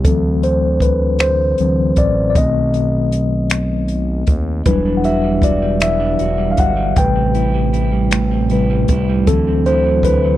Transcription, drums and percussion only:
0.05 kick loud
0.05 closed hi-hat medium
0.43 closed hi-hat soft
0.80 kick medium
0.80 closed hi-hat soft
1.19 finger snap medium
1.19 closed hi-hat medium
1.58 closed hi-hat soft
1.96 kick medium
1.96 closed hi-hat soft
2.35 kick loud
2.35 closed hi-hat medium
2.74 closed hi-hat soft
3.12 closed hi-hat soft
3.50 finger snap medium
3.50 closed hi-hat medium
3.88 closed hi-hat soft
4.27 kick medium
4.27 closed hi-hat soft
4.66 kick loud
4.66 closed hi-hat medium
5.04 closed hi-hat soft
5.42 kick medium
5.42 closed hi-hat soft
5.80 finger snap medium
5.80 closed hi-hat medium
6.19 closed hi-hat soft
6.57 kick medium
6.57 closed hi-hat soft
6.96 kick loud
6.96 closed hi-hat medium
7.35 closed hi-hat soft
7.74 closed hi-hat soft
8.11 finger snap medium
8.11 closed hi-hat medium
8.50 closed hi-hat soft
8.88 kick medium
8.88 closed hi-hat soft
9.27 kick loud
9.27 closed hi-hat medium
9.66 closed hi-hat soft
10.03 kick medium
10.03 closed hi-hat soft

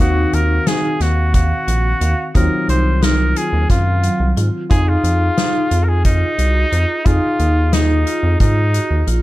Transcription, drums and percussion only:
0.00 kick medium
0.00 closed hi-hat medium
0.33 closed hi-hat soft
0.67 snare medium
0.67 closed hi-hat medium
1.01 snare soft
1.01 closed hi-hat soft
1.34 kick medium
1.34 closed hi-hat medium
1.68 closed hi-hat medium
2.01 closed hi-hat medium
2.35 kick medium
2.35 closed hi-hat medium
2.69 closed hi-hat soft
3.02 snare medium
3.02 closed hi-hat medium
3.36 closed hi-hat medium
3.70 kick medium
3.70 snare soft
3.70 closed hi-hat medium
4.03 closed hi-hat medium
4.37 closed hi-hat medium
4.71 kick medium
4.71 closed hi-hat medium
5.04 closed hi-hat medium
5.38 snare medium
5.38 closed hi-hat medium
5.71 closed hi-hat soft
6.05 kick medium
6.05 closed hi-hat medium
6.39 closed hi-hat medium
6.72 closed hi-hat soft
7.06 kick medium
7.06 closed hi-hat medium
7.39 closed hi-hat soft
7.73 snare loud
7.73 closed hi-hat medium
8.07 closed hi-hat medium
8.40 kick medium
8.40 closed hi-hat medium
8.74 closed hi-hat medium
9.07 closed hi-hat medium

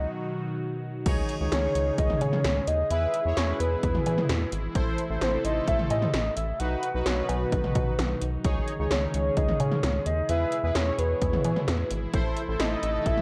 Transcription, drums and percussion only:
1.06 kick loud
1.06 closed hi-hat medium
1.06 crash loud
1.29 closed hi-hat medium
1.52 snare loud
1.52 closed hi-hat medium
1.75 closed hi-hat medium
1.98 kick medium
1.98 closed hi-hat medium
2.10 mid tom medium
2.21 closed hi-hat medium
2.21 cowbell medium
2.33 mid tom loud
2.45 snare loud
2.45 closed hi-hat medium
2.68 closed hi-hat medium
2.91 closed hi-hat medium
3.14 closed hi-hat medium
3.37 snare loud
3.37 closed hi-hat medium
3.60 closed hi-hat medium
3.83 kick medium
3.83 closed hi-hat medium
3.95 mid tom medium
4.06 closed hi-hat medium
4.06 cowbell medium
4.18 mid tom loud
4.29 snare loud
4.29 closed hi-hat medium
4.52 closed hi-hat medium
4.75 kick loud
4.75 closed hi-hat medium
4.98 closed hi-hat medium
5.21 snare loud
5.21 closed hi-hat medium
5.45 closed hi-hat medium
5.68 kick medium
5.68 closed hi-hat medium
5.79 mid tom medium
5.90 closed hi-hat medium
5.90 cowbell medium
6.02 mid tom loud
6.14 snare loud
6.14 closed hi-hat medium
6.37 closed hi-hat medium
6.60 closed hi-hat medium
6.83 closed hi-hat medium
7.06 snare loud
7.06 closed hi-hat medium
7.29 closed hi-hat medium
7.29 cowbell medium
7.52 kick medium
7.52 closed hi-hat medium
7.64 mid tom medium
7.75 kick loud
7.75 closed hi-hat medium
7.99 snare loud
7.99 closed hi-hat medium
8.21 closed hi-hat medium
8.44 kick loud
8.44 closed hi-hat medium
8.68 closed hi-hat medium
8.91 snare loud
8.91 closed hi-hat medium
9.14 closed hi-hat medium
9.37 kick medium
9.37 closed hi-hat medium
9.48 mid tom medium
9.60 closed hi-hat medium
9.60 cowbell medium
9.71 mid tom loud
9.83 snare loud
9.83 closed hi-hat medium
10.06 closed hi-hat medium
10.29 closed hi-hat medium
10.52 closed hi-hat medium
10.75 snare loud
10.75 closed hi-hat medium
10.99 closed hi-hat medium
11.21 kick medium
11.21 closed hi-hat medium
11.33 mid tom medium
11.44 closed hi-hat medium
11.44 cowbell medium
11.56 mid tom loud
11.68 snare loud
11.68 closed hi-hat medium
11.91 closed hi-hat medium
12.14 kick loud
12.14 closed hi-hat medium
12.37 closed hi-hat medium
12.60 snare loud
12.60 closed hi-hat medium
12.83 closed hi-hat medium
13.06 kick medium
13.06 closed hi-hat medium
13.17 mid tom medium

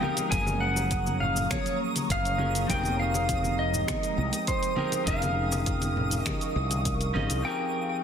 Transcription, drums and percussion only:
0.03 high conga medium
0.17 closed hi-hat soft
0.17 muted conga medium
0.17 shaker medium
0.32 kick loud
0.32 closed hi-hat medium
0.32 shaker soft
0.46 high conga medium
0.46 shaker soft
0.76 muted conga medium
0.76 shaker medium
0.91 kick loud
0.91 closed hi-hat medium
0.91 shaker soft
1.06 high conga medium
1.06 shaker soft
1.20 low conga medium
1.36 low conga medium
1.36 shaker medium
1.51 finger snap medium
1.51 kick loud
1.51 closed hi-hat medium
1.51 high conga medium
1.51 shaker medium
1.66 closed hi-hat soft
1.66 shaker soft
1.95 closed hi-hat soft
1.95 muted conga soft
1.95 high conga medium
1.95 shaker medium
2.10 kick medium
2.10 closed hi-hat medium
2.10 shaker medium
2.25 closed hi-hat soft
2.25 shaker soft
2.39 high conga medium
2.55 closed hi-hat soft
2.55 shaker medium
2.69 kick loud
2.69 closed hi-hat medium
2.69 shaker medium
2.84 high conga medium
2.84 shaker soft
3.14 muted conga medium
3.14 shaker medium
3.29 kick loud
3.29 closed hi-hat medium
3.29 shaker soft
3.44 high conga medium
3.44 shaker soft
3.73 low conga medium
3.73 shaker medium
3.88 finger snap medium
3.88 kick loud
3.88 closed hi-hat medium
3.88 high conga medium
3.88 shaker medium
4.03 closed hi-hat soft
4.03 shaker soft
4.32 closed hi-hat soft
4.32 muted conga medium
4.32 high conga medium
4.32 shaker medium
4.47 kick medium
4.47 closed hi-hat medium
4.47 shaker medium
4.63 closed hi-hat soft
4.63 shaker soft
4.76 high conga medium
4.92 closed hi-hat soft
4.92 muted conga medium
4.92 shaker medium
5.07 kick loud
5.07 closed hi-hat medium
5.07 shaker medium
5.22 closed hi-hat soft
5.22 high conga medium
5.22 shaker soft
5.52 muted conga medium
5.52 shaker medium
5.66 kick loud
5.66 closed hi-hat medium
5.66 shaker soft
5.81 closed hi-hat soft
5.81 high conga medium
5.81 shaker soft
5.97 low conga medium
6.10 closed hi-hat soft
6.10 low conga medium
6.10 shaker medium
6.26 finger snap medium
6.26 kick medium
6.26 closed hi-hat medium
6.26 high conga medium
6.26 shaker medium
6.41 closed hi-hat soft
6.41 shaker soft
6.71 closed hi-hat soft
6.71 muted conga soft
6.71 high conga medium
6.71 shaker medium
6.85 kick medium
6.85 closed hi-hat medium
6.85 shaker medium
7.01 closed hi-hat soft
7.01 shaker soft
7.16 high conga medium
7.30 closed hi-hat soft
7.30 shaker medium

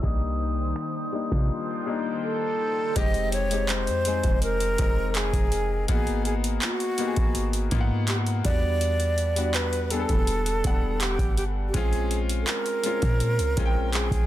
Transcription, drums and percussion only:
0.03 kick loud
0.03 closed hi-hat medium
0.21 closed hi-hat soft
0.40 closed hi-hat medium
0.58 closed hi-hat medium
0.76 finger snap loud
0.76 closed hi-hat medium
0.95 closed hi-hat soft
1.12 closed hi-hat medium
1.31 kick medium
1.31 closed hi-hat soft
2.96 kick loud
2.96 closed hi-hat medium
3.14 closed hi-hat soft
3.32 closed hi-hat medium
3.51 closed hi-hat medium
3.69 clap loud
3.69 closed hi-hat medium
3.87 closed hi-hat soft
4.05 closed hi-hat medium
4.24 kick loud
4.24 closed hi-hat soft
4.42 closed hi-hat medium
4.60 closed hi-hat medium
4.78 kick loud
4.78 closed hi-hat medium
5.15 clap loud
5.15 closed hi-hat medium
5.33 kick medium
5.33 closed hi-hat medium
5.52 closed hi-hat medium
5.88 kick loud
5.88 closed hi-hat medium
6.07 closed hi-hat soft
6.25 closed hi-hat medium
6.44 closed hi-hat medium
6.62 clap loud
6.62 closed hi-hat medium
6.80 closed hi-hat soft
6.98 closed hi-hat medium
7.16 kick loud
7.16 closed hi-hat soft
7.35 closed hi-hat medium
7.53 closed hi-hat medium
7.71 kick loud
7.71 closed hi-hat medium
8.07 clap loud
8.07 closed hi-hat medium
8.26 closed hi-hat medium
8.45 kick loud
8.45 closed hi-hat medium
8.81 closed hi-hat medium
9.00 closed hi-hat soft
9.18 closed hi-hat medium
9.36 closed hi-hat medium
9.54 clap loud
9.54 closed hi-hat medium
9.73 closed hi-hat soft
9.90 closed hi-hat medium
10.09 kick loud
10.09 closed hi-hat soft
10.27 closed hi-hat medium
10.46 closed hi-hat medium
10.64 kick loud
10.64 closed hi-hat medium
11.00 clap loud
11.00 closed hi-hat medium
11.18 kick medium
11.18 closed hi-hat medium
11.37 closed hi-hat medium
11.74 kick loud
11.74 closed hi-hat medium
11.93 closed hi-hat soft
12.11 closed hi-hat medium
12.29 closed hi-hat medium
12.47 clap loud
12.47 closed hi-hat medium
12.66 closed hi-hat soft
12.84 closed hi-hat medium
13.02 kick medium
13.02 closed hi-hat soft
13.20 closed hi-hat medium
13.39 closed hi-hat medium
13.57 kick loud
13.57 closed hi-hat medium
13.93 clap loud
13.93 closed hi-hat medium
14.11 kick medium
14.11 closed hi-hat medium

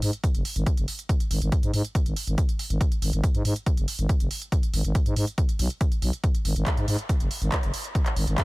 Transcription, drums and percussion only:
0.02 open hi-hat loud
0.13 closed hi-hat medium
0.24 kick loud
0.24 closed hi-hat medium
0.35 closed hi-hat medium
0.45 open hi-hat loud
0.56 closed hi-hat medium
0.66 kick loud
0.66 closed hi-hat medium
0.77 closed hi-hat medium
0.88 open hi-hat loud
0.99 closed hi-hat medium
1.09 kick loud
1.09 closed hi-hat medium
1.20 closed hi-hat medium
1.31 open hi-hat loud
1.42 closed hi-hat medium
1.52 kick loud
1.52 closed hi-hat medium
1.63 closed hi-hat medium
1.74 open hi-hat loud
1.85 closed hi-hat medium
1.95 kick loud
1.95 closed hi-hat medium
2.06 closed hi-hat medium
2.16 open hi-hat loud
2.27 closed hi-hat medium
2.38 kick loud
2.38 closed hi-hat medium
2.49 closed hi-hat medium
2.59 open hi-hat loud
2.70 closed hi-hat medium
2.81 kick loud
2.81 closed hi-hat medium
2.92 closed hi-hat medium
3.02 open hi-hat loud
3.13 closed hi-hat medium
3.24 kick loud
3.24 closed hi-hat medium
3.35 closed hi-hat medium
3.45 open hi-hat loud
3.56 closed hi-hat medium
3.66 kick loud
3.66 closed hi-hat medium
3.77 closed hi-hat medium
3.88 open hi-hat loud
3.99 closed hi-hat medium
4.09 kick loud
4.09 closed hi-hat medium
4.20 closed hi-hat medium
4.31 open hi-hat loud
4.42 closed hi-hat medium
4.52 kick loud
4.52 closed hi-hat medium
4.63 closed hi-hat medium
4.74 open hi-hat loud
4.85 closed hi-hat medium
4.95 kick loud
4.95 closed hi-hat medium
5.06 closed hi-hat medium
5.16 open hi-hat loud
5.27 closed hi-hat soft
5.38 kick loud
5.38 closed hi-hat medium
5.49 closed hi-hat soft
5.59 open hi-hat loud
5.70 closed hi-hat soft
5.81 kick loud
5.81 closed hi-hat medium
5.92 closed hi-hat medium
6.02 open hi-hat loud
6.13 closed hi-hat medium
6.24 kick loud
6.24 closed hi-hat medium
6.35 closed hi-hat medium
6.45 open hi-hat loud
6.56 closed hi-hat medium
6.66 kick loud
6.66 clap loud
6.66 closed hi-hat medium
6.77 closed hi-hat soft
6.88 open hi-hat loud
6.99 closed hi-hat soft
7.09 kick loud
7.09 closed hi-hat medium
7.20 closed hi-hat soft
7.31 open hi-hat loud
7.42 closed hi-hat soft
7.52 kick loud
7.52 clap loud
7.52 closed hi-hat medium
7.63 closed hi-hat soft
7.74 open hi-hat loud
7.85 closed hi-hat medium
7.95 kick loud
7.95 closed hi-hat medium
8.06 clap soft
8.06 closed hi-hat medium
8.16 open hi-hat loud
8.27 closed hi-hat medium
8.38 kick loud
8.38 clap loud
8.38 closed hi-hat medium

